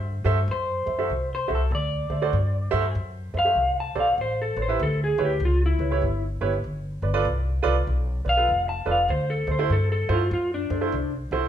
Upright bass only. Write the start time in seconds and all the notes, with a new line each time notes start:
Already playing: G2
0.25 G2
0.48 F#2
0.87 F#2
1.10 C2
1.50 C2
1.71 D2
2.10 D2
2.33 G2
2.73 G2
2.95 F#2
3.34 F#2
3.55 C2
3.96 B1
4.18 A1
4.56 A1
4.80 D2
5.18 D2
5.40 C#2
5.79 C#2
6.02 G1
6.41 G1
6.64 G1
7.02 G1
7.25 C2
7.65 C2
7.87 B1
8.26 B1
8.49 F1
8.87 F1
9.08 D2
9.47 D2
9.70 G2
10.09 G2
10.31 F#2
10.70 F#2
10.92 C2
11.31 C2